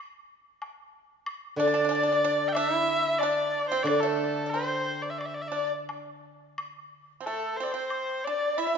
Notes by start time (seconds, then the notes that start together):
0.62 high woodblock, low woodblock
1.26 high woodblock
1.56 D3 D4 D5
1.68 D4
1.74 D4
1.85 D4
1.89 D4, low woodblock
1.95 D4
2.03 D4
2.12 D4
2.24 D4
2.48 G5
2.52 D4 E5, high woodblock
2.74 E4
3.19 D5, high woodblock, low woodblock
3.23 D4
3.68 C4 C5
3.83 D3 D4 D5
3.87 D5, high woodblock
4.00 A3 A4
4.04 A4
4.46 D4 C5
4.53 C4 C5, low woodblock
5.02 D5
5.10 E5
5.18 D5, high woodblock
5.26 E5
5.34 D5
5.42 E5
5.48 D4 D5
5.52 D5
5.89 high woodblock, low woodblock
6.58 high woodblock
7.21 C4 A4
7.26 A3 A4, low woodblock
7.57 C4 C5
7.64 D5
7.72 C4 C5
7.90 high woodblock
8.24 D4 D5
8.57 E4 E5
8.67 E4